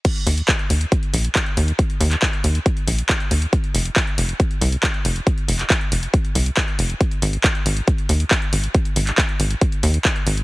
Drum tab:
CC |x---------------|----------------|----------------|----------------|
HH |xxoxxxoxxxoxxxox|xxoxxxoxxxoxxxox|xxoxxxoxxxoxxxox|xxoxxxoxxxoxxxox|
CP |----x-------x---|---xx-------x---|----x-------x---|---xx-------x---|
BD |o---o---o---o---|o---o---o---o---|o---o---o---o---|o---o---o---o---|

CC |----------------|----------------|
HH |xxoxxxoxxxoxxxox|xxoxxxoxxxoxxxox|
CP |----x-------x---|---xx-------x---|
BD |o---o---o---o---|o---o---o---o---|